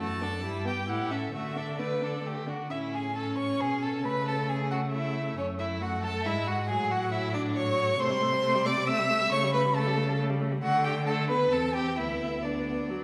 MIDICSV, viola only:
0, 0, Header, 1, 2, 480
1, 0, Start_track
1, 0, Time_signature, 3, 2, 24, 8
1, 0, Tempo, 451807
1, 3835, Tempo, 438596
1, 11035, Tempo, 451467
1, 14065, End_track
2, 0, Start_track
2, 0, Title_t, "Viola"
2, 0, Program_c, 0, 41
2, 0, Note_on_c, 0, 57, 45
2, 230, Note_on_c, 0, 62, 41
2, 246, Note_off_c, 0, 57, 0
2, 453, Note_off_c, 0, 62, 0
2, 459, Note_on_c, 0, 55, 48
2, 690, Note_on_c, 0, 59, 41
2, 706, Note_off_c, 0, 55, 0
2, 925, Note_off_c, 0, 59, 0
2, 931, Note_on_c, 0, 64, 42
2, 1178, Note_on_c, 0, 61, 39
2, 1194, Note_off_c, 0, 64, 0
2, 1422, Note_off_c, 0, 61, 0
2, 1427, Note_on_c, 0, 57, 44
2, 1657, Note_on_c, 0, 62, 36
2, 1673, Note_off_c, 0, 57, 0
2, 1904, Note_on_c, 0, 57, 40
2, 1920, Note_off_c, 0, 62, 0
2, 2143, Note_on_c, 0, 62, 35
2, 2159, Note_off_c, 0, 57, 0
2, 2377, Note_off_c, 0, 62, 0
2, 2384, Note_on_c, 0, 57, 30
2, 2629, Note_on_c, 0, 62, 33
2, 2645, Note_off_c, 0, 57, 0
2, 2876, Note_off_c, 0, 62, 0
2, 2880, Note_on_c, 0, 61, 37
2, 3324, Note_off_c, 0, 61, 0
2, 3353, Note_on_c, 0, 61, 47
2, 4311, Note_on_c, 0, 57, 44
2, 4327, Note_off_c, 0, 61, 0
2, 6246, Note_off_c, 0, 57, 0
2, 6251, Note_on_c, 0, 57, 46
2, 6739, Note_on_c, 0, 56, 45
2, 6756, Note_off_c, 0, 57, 0
2, 7212, Note_on_c, 0, 54, 52
2, 7229, Note_off_c, 0, 56, 0
2, 8155, Note_off_c, 0, 54, 0
2, 8162, Note_on_c, 0, 54, 55
2, 8628, Note_off_c, 0, 54, 0
2, 8638, Note_on_c, 0, 57, 53
2, 8754, Note_on_c, 0, 55, 53
2, 8771, Note_off_c, 0, 57, 0
2, 8873, Note_on_c, 0, 57, 46
2, 8890, Note_off_c, 0, 55, 0
2, 8996, Note_on_c, 0, 55, 50
2, 9012, Note_off_c, 0, 57, 0
2, 9107, Note_off_c, 0, 55, 0
2, 9114, Note_on_c, 0, 57, 62
2, 9235, Note_on_c, 0, 55, 54
2, 9252, Note_off_c, 0, 57, 0
2, 9357, Note_on_c, 0, 57, 52
2, 9373, Note_off_c, 0, 55, 0
2, 9485, Note_on_c, 0, 55, 45
2, 9502, Note_off_c, 0, 57, 0
2, 9600, Note_off_c, 0, 55, 0
2, 9609, Note_on_c, 0, 57, 53
2, 9726, Note_on_c, 0, 55, 48
2, 9742, Note_off_c, 0, 57, 0
2, 9837, Note_on_c, 0, 57, 49
2, 9854, Note_off_c, 0, 55, 0
2, 9959, Note_on_c, 0, 55, 55
2, 9976, Note_off_c, 0, 57, 0
2, 10075, Note_off_c, 0, 55, 0
2, 10082, Note_on_c, 0, 57, 58
2, 10208, Note_on_c, 0, 55, 49
2, 10224, Note_off_c, 0, 57, 0
2, 10314, Note_on_c, 0, 57, 51
2, 10330, Note_off_c, 0, 55, 0
2, 10445, Note_on_c, 0, 55, 48
2, 10462, Note_off_c, 0, 57, 0
2, 10550, Note_off_c, 0, 55, 0
2, 10557, Note_on_c, 0, 57, 58
2, 10679, Note_on_c, 0, 55, 53
2, 10695, Note_off_c, 0, 57, 0
2, 10789, Note_on_c, 0, 57, 50
2, 10806, Note_off_c, 0, 55, 0
2, 10922, Note_on_c, 0, 55, 50
2, 10938, Note_off_c, 0, 57, 0
2, 11028, Note_off_c, 0, 55, 0
2, 11034, Note_on_c, 0, 57, 45
2, 11150, Note_on_c, 0, 55, 46
2, 11166, Note_off_c, 0, 57, 0
2, 11276, Note_on_c, 0, 57, 45
2, 11292, Note_off_c, 0, 55, 0
2, 11383, Note_on_c, 0, 55, 42
2, 11399, Note_off_c, 0, 57, 0
2, 11496, Note_off_c, 0, 55, 0
2, 11503, Note_on_c, 0, 57, 53
2, 11943, Note_off_c, 0, 57, 0
2, 11973, Note_on_c, 0, 57, 54
2, 12209, Note_on_c, 0, 59, 50
2, 12225, Note_off_c, 0, 57, 0
2, 12449, Note_on_c, 0, 60, 45
2, 12465, Note_off_c, 0, 59, 0
2, 12940, Note_on_c, 0, 59, 41
2, 12956, Note_off_c, 0, 60, 0
2, 13416, Note_off_c, 0, 59, 0
2, 13422, Note_on_c, 0, 59, 45
2, 13916, Note_on_c, 0, 54, 41
2, 13932, Note_off_c, 0, 59, 0
2, 14065, Note_off_c, 0, 54, 0
2, 14065, End_track
0, 0, End_of_file